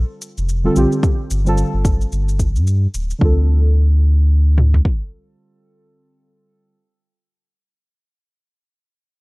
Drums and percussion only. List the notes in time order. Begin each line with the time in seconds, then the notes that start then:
0.22 shaker
0.38 shaker
0.49 shaker
0.76 shaker
0.92 shaker
1.03 kick, shaker
1.31 shaker
1.47 shaker
1.58 shaker
1.85 kick, shaker
2.01 shaker
2.12 shaker
2.29 shaker
2.39 kick, shaker
2.56 shaker
2.67 shaker
2.94 shaker
3.10 shaker
3.21 kick
4.58 mid tom
4.74 floor tom
4.85 kick